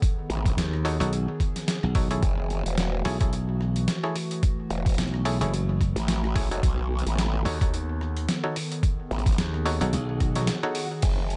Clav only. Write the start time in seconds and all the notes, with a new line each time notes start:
0.85 D#4 F#4 A4 C#5
1.00 D#4 F#4 A4 C#5
1.95 D#4 F#4 A4 C#5
2.11 E4 G#4 A4 C#5
3.05 E4 G#4 A4 C#5
3.21 E4 G#4 A4 C#5
4.03 E4 G#4 A4 C#5
5.25 E4 G#4 A4 C#5
5.41 E4 G#4 A4 C#5
6.36 E4 G#4 A4 C#5
6.51 D#4 F#4 A4 C#5
7.45 D#4 F#4 A4 C#5
7.61 D#4 F#4 A4 C#5
8.44 D#4 F#4 A4 C#5
9.65 D#4 F#4 A4 C#5
9.81 D#4 F#4 A4 C#5
10.36 D#4 F#4 A4 C#5
10.63 D#4 F#4 A4 C#5